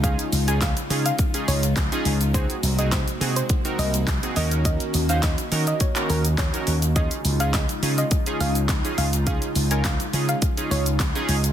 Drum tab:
HH |xxoxxxoxxxoxxxox|xxoxxxoxxxoxxxox|xxoxxxoxxxoxxxox|xxoxxxoxxxoxxxox|
SH |xxxxxxxxxxxxxxxx|xxxxxxxxxxxxxxxx|xxxxxxxxxxxxxxxx|xxxxxxxxxxxxxxxx|
CP |----x-------x---|----x-------x---|----x----x--x---|----x-------x---|
SD |----o-------o---|----o-------o---|----o-------o---|----o-------o---|
BD |o---o---o---o---|o---o---o---o---|o---o---o---o---|o---o---o---o---|

HH |xxoxxxoxxxoxxxox|
SH |xxxxxxxxxxxxxxxx|
CP |----x-------x---|
SD |----o-------o---|
BD |o---o---o---o---|